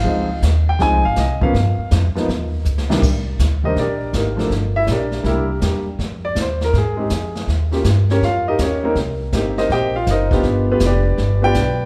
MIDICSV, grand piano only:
0, 0, Header, 1, 2, 480
1, 0, Start_track
1, 0, Key_signature, -3, "minor"
1, 0, Tempo, 370828
1, 66, Time_signature, 4, 2, 24, 8
1, 15344, End_track
2, 0, Start_track
2, 0, Title_t, "Grand piano"
2, 0, Program_c, 0, 0
2, 0, Note_on_c, 0, 77, 84
2, 42, Note_on_c, 0, 53, 58
2, 51, Note_on_c, 0, 56, 58
2, 64, Note_on_c, 0, 60, 49
2, 74, Note_on_c, 0, 63, 58
2, 340, Note_off_c, 0, 53, 0
2, 345, Note_off_c, 0, 56, 0
2, 352, Note_off_c, 0, 60, 0
2, 356, Note_off_c, 0, 63, 0
2, 498, Note_off_c, 0, 77, 0
2, 895, Note_on_c, 0, 79, 85
2, 1019, Note_on_c, 0, 53, 60
2, 1029, Note_on_c, 0, 56, 59
2, 1036, Note_on_c, 0, 60, 61
2, 1037, Note_off_c, 0, 79, 0
2, 1044, Note_on_c, 0, 63, 71
2, 1057, Note_on_c, 0, 80, 106
2, 1309, Note_off_c, 0, 53, 0
2, 1314, Note_off_c, 0, 56, 0
2, 1318, Note_off_c, 0, 60, 0
2, 1321, Note_off_c, 0, 63, 0
2, 1351, Note_off_c, 0, 80, 0
2, 1361, Note_on_c, 0, 77, 90
2, 1510, Note_off_c, 0, 77, 0
2, 1545, Note_on_c, 0, 75, 75
2, 1827, Note_on_c, 0, 53, 67
2, 1835, Note_off_c, 0, 75, 0
2, 1835, Note_on_c, 0, 58, 60
2, 1849, Note_on_c, 0, 59, 63
2, 1851, Note_on_c, 0, 77, 88
2, 1855, Note_on_c, 0, 61, 76
2, 1971, Note_off_c, 0, 53, 0
2, 1975, Note_off_c, 0, 58, 0
2, 1983, Note_off_c, 0, 59, 0
2, 1985, Note_off_c, 0, 61, 0
2, 2436, Note_off_c, 0, 77, 0
2, 2788, Note_on_c, 0, 53, 64
2, 2798, Note_on_c, 0, 58, 57
2, 2804, Note_on_c, 0, 59, 59
2, 2815, Note_on_c, 0, 63, 70
2, 2932, Note_off_c, 0, 53, 0
2, 2937, Note_off_c, 0, 58, 0
2, 2940, Note_off_c, 0, 59, 0
2, 2945, Note_off_c, 0, 63, 0
2, 3749, Note_on_c, 0, 36, 68
2, 3754, Note_on_c, 0, 51, 62
2, 3755, Note_on_c, 0, 55, 64
2, 3771, Note_on_c, 0, 58, 64
2, 3771, Note_on_c, 0, 62, 75
2, 3893, Note_off_c, 0, 36, 0
2, 3896, Note_off_c, 0, 51, 0
2, 3896, Note_off_c, 0, 55, 0
2, 3904, Note_off_c, 0, 58, 0
2, 3904, Note_off_c, 0, 62, 0
2, 4707, Note_on_c, 0, 51, 57
2, 4710, Note_on_c, 0, 55, 48
2, 4723, Note_on_c, 0, 58, 48
2, 4727, Note_on_c, 0, 62, 61
2, 4727, Note_on_c, 0, 75, 80
2, 4737, Note_on_c, 0, 63, 62
2, 4738, Note_on_c, 0, 70, 61
2, 4738, Note_on_c, 0, 72, 59
2, 4852, Note_off_c, 0, 51, 0
2, 4854, Note_off_c, 0, 55, 0
2, 4860, Note_off_c, 0, 58, 0
2, 4862, Note_off_c, 0, 62, 0
2, 4874, Note_off_c, 0, 75, 0
2, 4879, Note_off_c, 0, 63, 0
2, 4880, Note_off_c, 0, 70, 0
2, 4880, Note_off_c, 0, 72, 0
2, 4910, Note_on_c, 0, 62, 59
2, 4911, Note_on_c, 0, 74, 73
2, 4912, Note_on_c, 0, 67, 62
2, 4913, Note_on_c, 0, 70, 62
2, 5337, Note_off_c, 0, 62, 0
2, 5338, Note_off_c, 0, 67, 0
2, 5338, Note_off_c, 0, 74, 0
2, 5339, Note_off_c, 0, 70, 0
2, 5381, Note_on_c, 0, 70, 59
2, 5389, Note_on_c, 0, 58, 49
2, 5394, Note_on_c, 0, 63, 43
2, 5395, Note_on_c, 0, 67, 43
2, 5652, Note_on_c, 0, 53, 59
2, 5654, Note_off_c, 0, 58, 0
2, 5667, Note_on_c, 0, 57, 56
2, 5673, Note_on_c, 0, 58, 57
2, 5678, Note_on_c, 0, 62, 72
2, 5805, Note_off_c, 0, 53, 0
2, 5813, Note_off_c, 0, 57, 0
2, 5813, Note_off_c, 0, 70, 0
2, 5816, Note_off_c, 0, 58, 0
2, 5818, Note_off_c, 0, 62, 0
2, 5819, Note_off_c, 0, 63, 0
2, 5820, Note_off_c, 0, 67, 0
2, 6164, Note_on_c, 0, 76, 95
2, 6170, Note_on_c, 0, 64, 77
2, 6290, Note_on_c, 0, 73, 50
2, 6313, Note_off_c, 0, 76, 0
2, 6316, Note_off_c, 0, 64, 0
2, 6324, Note_off_c, 0, 73, 0
2, 6351, Note_on_c, 0, 67, 57
2, 6355, Note_on_c, 0, 74, 66
2, 6359, Note_on_c, 0, 62, 55
2, 6359, Note_on_c, 0, 70, 57
2, 6776, Note_on_c, 0, 55, 65
2, 6778, Note_off_c, 0, 67, 0
2, 6780, Note_off_c, 0, 62, 0
2, 6780, Note_off_c, 0, 74, 0
2, 6783, Note_off_c, 0, 70, 0
2, 6784, Note_on_c, 0, 58, 58
2, 6799, Note_on_c, 0, 62, 58
2, 6802, Note_on_c, 0, 64, 75
2, 6819, Note_off_c, 0, 58, 0
2, 6831, Note_on_c, 0, 70, 69
2, 6835, Note_on_c, 0, 67, 55
2, 6839, Note_on_c, 0, 58, 57
2, 7069, Note_off_c, 0, 55, 0
2, 7081, Note_off_c, 0, 62, 0
2, 7082, Note_off_c, 0, 64, 0
2, 7247, Note_off_c, 0, 58, 0
2, 7253, Note_on_c, 0, 55, 50
2, 7258, Note_off_c, 0, 70, 0
2, 7260, Note_off_c, 0, 67, 0
2, 7267, Note_on_c, 0, 58, 46
2, 7277, Note_on_c, 0, 62, 44
2, 7282, Note_on_c, 0, 67, 58
2, 7548, Note_off_c, 0, 55, 0
2, 7555, Note_off_c, 0, 58, 0
2, 7560, Note_off_c, 0, 62, 0
2, 7563, Note_off_c, 0, 67, 0
2, 8085, Note_on_c, 0, 74, 90
2, 8234, Note_off_c, 0, 74, 0
2, 8296, Note_on_c, 0, 72, 76
2, 8573, Note_off_c, 0, 72, 0
2, 8599, Note_on_c, 0, 70, 88
2, 8732, Note_off_c, 0, 70, 0
2, 8772, Note_on_c, 0, 68, 76
2, 9017, Note_on_c, 0, 56, 62
2, 9021, Note_on_c, 0, 60, 49
2, 9036, Note_on_c, 0, 63, 50
2, 9045, Note_on_c, 0, 67, 56
2, 9168, Note_off_c, 0, 56, 0
2, 9170, Note_off_c, 0, 60, 0
2, 9178, Note_off_c, 0, 63, 0
2, 9183, Note_off_c, 0, 67, 0
2, 9649, Note_off_c, 0, 68, 0
2, 9986, Note_on_c, 0, 58, 57
2, 9994, Note_on_c, 0, 61, 56
2, 10004, Note_on_c, 0, 65, 53
2, 10008, Note_on_c, 0, 67, 69
2, 10133, Note_off_c, 0, 58, 0
2, 10137, Note_off_c, 0, 61, 0
2, 10142, Note_off_c, 0, 65, 0
2, 10144, Note_off_c, 0, 67, 0
2, 10498, Note_on_c, 0, 61, 69
2, 10498, Note_on_c, 0, 73, 78
2, 10501, Note_on_c, 0, 67, 66
2, 10509, Note_on_c, 0, 70, 70
2, 10641, Note_off_c, 0, 61, 0
2, 10641, Note_off_c, 0, 73, 0
2, 10642, Note_off_c, 0, 67, 0
2, 10646, Note_off_c, 0, 70, 0
2, 10672, Note_on_c, 0, 65, 71
2, 10673, Note_on_c, 0, 77, 96
2, 10961, Note_off_c, 0, 65, 0
2, 10961, Note_off_c, 0, 77, 0
2, 10977, Note_on_c, 0, 75, 81
2, 10981, Note_on_c, 0, 67, 69
2, 10985, Note_on_c, 0, 63, 64
2, 10990, Note_on_c, 0, 70, 67
2, 11120, Note_off_c, 0, 75, 0
2, 11122, Note_off_c, 0, 67, 0
2, 11124, Note_off_c, 0, 63, 0
2, 11127, Note_off_c, 0, 70, 0
2, 11143, Note_on_c, 0, 73, 70
2, 11147, Note_on_c, 0, 67, 52
2, 11147, Note_on_c, 0, 70, 57
2, 11152, Note_on_c, 0, 61, 54
2, 11429, Note_on_c, 0, 58, 78
2, 11435, Note_off_c, 0, 70, 0
2, 11439, Note_on_c, 0, 60, 64
2, 11447, Note_on_c, 0, 63, 65
2, 11454, Note_on_c, 0, 70, 76
2, 11574, Note_off_c, 0, 73, 0
2, 11575, Note_off_c, 0, 58, 0
2, 11577, Note_off_c, 0, 67, 0
2, 11579, Note_off_c, 0, 60, 0
2, 11579, Note_off_c, 0, 61, 0
2, 11583, Note_off_c, 0, 63, 0
2, 11587, Note_off_c, 0, 70, 0
2, 12076, Note_on_c, 0, 58, 57
2, 12088, Note_on_c, 0, 60, 53
2, 12092, Note_on_c, 0, 63, 56
2, 12101, Note_on_c, 0, 67, 68
2, 12390, Note_off_c, 0, 63, 0
2, 12404, Note_on_c, 0, 75, 86
2, 12405, Note_on_c, 0, 72, 72
2, 12409, Note_on_c, 0, 63, 70
2, 12412, Note_on_c, 0, 70, 64
2, 12553, Note_off_c, 0, 72, 0
2, 12553, Note_off_c, 0, 75, 0
2, 12556, Note_off_c, 0, 63, 0
2, 12557, Note_off_c, 0, 70, 0
2, 12565, Note_off_c, 0, 67, 0
2, 12583, Note_on_c, 0, 79, 96
2, 12584, Note_on_c, 0, 67, 79
2, 12590, Note_on_c, 0, 72, 70
2, 12593, Note_on_c, 0, 75, 71
2, 12807, Note_off_c, 0, 58, 0
2, 12813, Note_off_c, 0, 60, 0
2, 12875, Note_off_c, 0, 79, 0
2, 12876, Note_off_c, 0, 67, 0
2, 12879, Note_off_c, 0, 72, 0
2, 12881, Note_off_c, 0, 75, 0
2, 12890, Note_on_c, 0, 77, 91
2, 12899, Note_on_c, 0, 65, 74
2, 13036, Note_off_c, 0, 77, 0
2, 13041, Note_off_c, 0, 65, 0
2, 13085, Note_on_c, 0, 75, 82
2, 13086, Note_on_c, 0, 63, 66
2, 13087, Note_on_c, 0, 70, 64
2, 13087, Note_on_c, 0, 72, 58
2, 13357, Note_on_c, 0, 59, 72
2, 13362, Note_on_c, 0, 62, 68
2, 13373, Note_on_c, 0, 65, 63
2, 13381, Note_on_c, 0, 67, 77
2, 13506, Note_off_c, 0, 63, 0
2, 13506, Note_off_c, 0, 72, 0
2, 13506, Note_off_c, 0, 75, 0
2, 13507, Note_off_c, 0, 70, 0
2, 13850, Note_off_c, 0, 65, 0
2, 13856, Note_off_c, 0, 67, 0
2, 13857, Note_off_c, 0, 59, 0
2, 13869, Note_on_c, 0, 65, 66
2, 13870, Note_on_c, 0, 71, 89
2, 13875, Note_on_c, 0, 67, 63
2, 13876, Note_on_c, 0, 59, 74
2, 13964, Note_off_c, 0, 62, 0
2, 14006, Note_off_c, 0, 65, 0
2, 14006, Note_off_c, 0, 71, 0
2, 14009, Note_off_c, 0, 59, 0
2, 14009, Note_off_c, 0, 67, 0
2, 14056, Note_on_c, 0, 74, 82
2, 14061, Note_on_c, 0, 62, 60
2, 14064, Note_on_c, 0, 67, 66
2, 14067, Note_on_c, 0, 71, 60
2, 14768, Note_off_c, 0, 74, 0
2, 14770, Note_off_c, 0, 62, 0
2, 14772, Note_off_c, 0, 67, 0
2, 14773, Note_off_c, 0, 71, 0
2, 14782, Note_on_c, 0, 59, 70
2, 14789, Note_on_c, 0, 62, 68
2, 14797, Note_on_c, 0, 65, 60
2, 14805, Note_on_c, 0, 67, 76
2, 14810, Note_on_c, 0, 79, 109
2, 14820, Note_on_c, 0, 71, 77
2, 14826, Note_on_c, 0, 74, 79
2, 14930, Note_off_c, 0, 59, 0
2, 14933, Note_off_c, 0, 62, 0
2, 14937, Note_off_c, 0, 65, 0
2, 14941, Note_off_c, 0, 67, 0
2, 15344, Note_off_c, 0, 71, 0
2, 15344, Note_off_c, 0, 74, 0
2, 15344, Note_off_c, 0, 79, 0
2, 15344, End_track
0, 0, End_of_file